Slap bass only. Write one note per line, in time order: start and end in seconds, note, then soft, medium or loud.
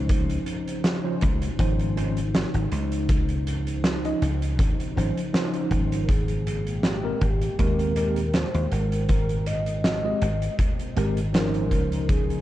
0.00 0.37 C#2 medium
1.22 1.48 C#2 medium
1.59 2.43 G#1 medium
2.54 2.66 G#1 medium
2.72 4.12 C#2 medium
4.22 4.59 C#2 medium
4.59 4.73 G#1 medium
4.97 5.10 G#1 medium
5.71 7.12 G#1 medium
7.22 7.47 G#1 medium
7.59 8.43 D#2 medium
8.54 8.66 D#2 medium
8.72 10.12 G#1 medium
10.22 10.48 G#1 medium
10.97 11.71 G#1 medium
11.71 12.37 C#2 medium